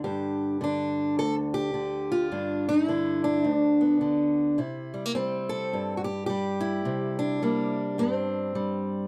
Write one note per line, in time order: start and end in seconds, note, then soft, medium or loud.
0.00 0.60 D3 medium
0.00 0.63 G4 soft
0.04 1.18 G2 medium
0.61 1.73 D3 medium
0.61 1.18 D4 medium
1.19 2.32 D2 medium
1.19 1.35 A4 loud
1.54 2.31 G4 loud
1.74 2.87 D3 medium
2.12 2.67 F4 medium
2.31 3.45 G2 medium
2.31 2.88 D4 soft
2.69 2.89 D#4 medium
2.88 4.00 D3 medium
2.88 3.23 D4 soft
2.88 3.43 E4 medium
3.24 3.56 D4 medium
3.43 4.58 D2 medium
3.43 3.56 D#4 medium
3.56 3.81 D4 medium
3.81 4.56 B3 soft
4.01 4.58 D3 medium
4.58 5.72 C3 medium
4.58 6.59 E4 soft
4.94 5.06 G3 soft
5.06 5.14 A#3 soft
5.15 6.29 G3 medium
5.15 6.06 C4 medium
5.49 5.97 A4 loud
5.73 6.83 G2 medium
5.97 6.04 F#4 medium
6.04 6.25 G4 medium
6.26 7.42 G3 medium
6.26 7.18 G4 medium
6.60 7.75 E4 medium
6.85 7.98 C3 medium
7.19 8.54 D4 loud
7.42 8.55 G3 medium
7.42 7.99 A#3 soft
7.98 9.07 G2 medium
7.98 9.07 C4 medium
8.55 9.07 G3 medium